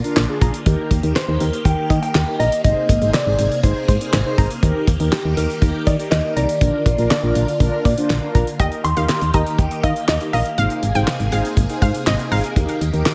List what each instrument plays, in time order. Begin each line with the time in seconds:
Already playing: string machine D3 A#3 F4
0.04 analog polysynth D4 F4 A#4, closed hi-hat
0.16 fm bass A#1, synth arpeggio sound D3, snare, clap
0.29 analog polysynth D4 F4 G#4
0.41 fm bass A#1, synth arpeggio sound A#5, kick, closed hi-hat
0.54 closed hi-hat
0.66 fm bass D#2, string machine D#3 G4, synth arpeggio sound D#3, analog polysynth D#4 G4 A#4, kick, closed hi-hat
0.91 fm bass D#2, synth arpeggio sound A#3, kick, closed hi-hat
1.03 fm bass D#2, analog polysynth D#4 G4 A#4, closed hi-hat
1.16 synth arpeggio sound D#3, clean electric guitar C5, snare, clap
1.28 fm bass D#2, analog polysynth D#4 G4 A#4
1.40 fm bass D#2, clean electric guitar A#4, closed hi-hat
1.53 closed hi-hat
1.65 fm bass D#2, synth arpeggio sound D#3, analog polysynth D#4 G4 A#4, clean electric guitar G5, kick, closed hi-hat
1.90 fm bass D#3, synth arpeggio sound D#5, kick, closed hi-hat
2.02 analog polysynth D#4 G4 A#4, clean electric guitar G5, closed hi-hat
2.15 fm bass D#2, synth arpeggio sound D#3, snare, clap
2.27 analog polysynth D#4 G4 A#4
2.39 fm bass A#1, clean electric guitar D#5, synth arpeggio sound A#5, closed hi-hat
2.52 closed hi-hat
2.64 fm bass G#1, string machine C3 G#4, synth arpeggio sound C3, analog polysynth D#4 G#4 C5, clean electric guitar D#5, kick, closed hi-hat
2.89 fm bass G#1, synth arpeggio sound A#3, kick, closed hi-hat
3.02 fm bass G#1, analog polysynth D#4 G#4 C5, closed hi-hat
3.14 synth arpeggio sound C3, clean electric guitar D5, snare, clap
3.26 fm bass G#1, analog polysynth D#4 G#4 C5
3.39 fm bass G#1, closed hi-hat
3.52 closed hi-hat
3.63 fm bass G#1, synth arpeggio sound C3, analog polysynth D#4 G#4 C5, clean electric guitar C5, kick, closed hi-hat
3.88 fm bass G#2, synth arpeggio sound C5, kick, closed hi-hat
4.01 analog polysynth D#4 G#4 C5, closed hi-hat
4.13 fm bass G#1, synth arpeggio sound C3, snare, clap
4.26 analog polysynth D#4 G#4 C5
4.38 fm bass G#1, synth arpeggio sound A#5, kick, closed hi-hat
4.50 closed hi-hat
4.63 fm bass D#2, synth arpeggio sound D#3, string machine D#3 G4, analog polysynth D#4 G4 A#4, kick, closed hi-hat
4.87 fm bass D#2, synth arpeggio sound A#3, kick, closed hi-hat
5.00 fm bass D#2, analog polysynth D#4 G4 A#4, closed hi-hat
5.12 synth arpeggio sound D#3, clean electric guitar G4, snare, clap
5.25 fm bass D#2, analog polysynth D#4 G4 A#4
5.37 fm bass D#2, clean electric guitar A#4, closed hi-hat
5.50 closed hi-hat
5.62 fm bass D#2, synth arpeggio sound D#3, analog polysynth D#4 G4 A#4, kick, closed hi-hat
5.87 fm bass D#3, clean electric guitar D5, synth arpeggio sound D#5, kick, closed hi-hat
5.99 analog polysynth D#4 G4 A#4, closed hi-hat
6.11 fm bass D#2, synth arpeggio sound D#3, clean electric guitar D#5, snare, clap
6.24 analog polysynth D#4 G4 A#4
6.36 fm bass C2, clean electric guitar D5, synth arpeggio sound A#5, closed hi-hat
6.49 closed hi-hat
6.61 fm bass A#1, string machine D3 F4, synth arpeggio sound D3, analog polysynth D4 F4 A#4, kick, closed hi-hat
6.86 fm bass A#1, synth arpeggio sound A#3, kick, closed hi-hat
6.98 fm bass A#1, analog polysynth D4 F4 A#4, closed hi-hat
7.11 synth arpeggio sound D3, snare, clap
7.23 fm bass A#1, analog polysynth D4 F4 A#4
7.35 fm bass A#1, closed hi-hat
7.48 closed hi-hat
7.60 fm bass A#1, synth arpeggio sound D3, analog polysynth D4 F4 A#4, kick, closed hi-hat
7.85 fm bass A#2, synth arpeggio sound D5, kick, closed hi-hat
7.98 analog polysynth D4 F4 C5, closed hi-hat
8.10 fm bass A#1, synth arpeggio sound D3, snare, clap
8.22 analog polysynth D4 F4 A#4
8.35 fm bass A#1, synth arpeggio sound A#5, kick, closed hi-hat
8.47 closed hi-hat
8.59 fm bass D#2, string machine D#3 A#3 G4, synth arpeggio sound D#3, analog polysynth D#4 G4 A#4, synth pluck D#5, clean electric guitar G5, kick, closed hi-hat
8.72 closed hi-hat
8.84 fm bass D#2, clean electric guitar C6, closed hi-hat
8.97 fm bass D#2, analog polysynth D#4 G4 A#4, synth pluck F5, closed hi-hat
9.09 synth arpeggio sound D#3, snare, clap
9.21 fm bass D#2, closed hi-hat
9.34 fm bass D#2, analog polysynth D#4 G4 A#4, synth arpeggio sound G4, synth pluck D#5, clean electric guitar A#5, kick, closed hi-hat
9.46 closed hi-hat
9.59 fm bass D#2, synth arpeggio sound D#3, clean electric guitar G5, kick, closed hi-hat
9.71 analog polysynth D#4 G4 A#4, closed hi-hat
9.83 fm bass D#3, synth pluck D#5, synth arpeggio sound D#5, clean electric guitar F5, kick, closed hi-hat
9.96 closed hi-hat
10.08 fm bass D#2, synth arpeggio sound D#3, clean electric guitar D#5, snare, clap
10.21 analog polysynth D#4 G4 A#4, closed hi-hat
10.33 fm bass A#1, synth pluck D#5, clean electric guitar F5, synth arpeggio sound A#5, open hi-hat
10.46 closed hi-hat
10.58 fm bass G#1, synth arpeggio sound C3, string machine C3 G#4, analog polysynth D#4 G#4 C5, synth pluck F5, closed hi-hat
10.70 closed hi-hat
10.83 fm bass G#1, closed hi-hat
10.95 fm bass G#1, analog polysynth D#4 G#4 C5, synth pluck G5, closed hi-hat
11.07 synth arpeggio sound C3, snare, clap
11.20 fm bass G#1, closed hi-hat
11.32 fm bass G#1, analog polysynth D#4 G#4 C5, synth arpeggio sound G#4, synth pluck F5, closed hi-hat
11.45 closed hi-hat
11.57 fm bass G#1, synth arpeggio sound C3, kick, closed hi-hat
11.69 analog polysynth D#4 G#4 C5, closed hi-hat
11.82 fm bass G#2, synth arpeggio sound C5, synth pluck F5, kick, closed hi-hat
11.94 closed hi-hat
12.07 fm bass G#1, synth arpeggio sound C3, synth pluck D#5, snare, clap
12.19 analog polysynth D#4 G#4 C5, closed hi-hat
12.31 fm bass G#1, synth pluck F5, synth arpeggio sound A#5, open hi-hat
12.44 closed hi-hat
12.56 fm bass D#2, synth arpeggio sound D#3, string machine D#3 G4, analog polysynth D#4 G4 A#4, kick, closed hi-hat
12.69 closed hi-hat
12.81 fm bass D#2, closed hi-hat
12.93 fm bass D#2, analog polysynth D#4 G4 A#4, closed hi-hat
13.06 synth arpeggio sound D#3, snare, clap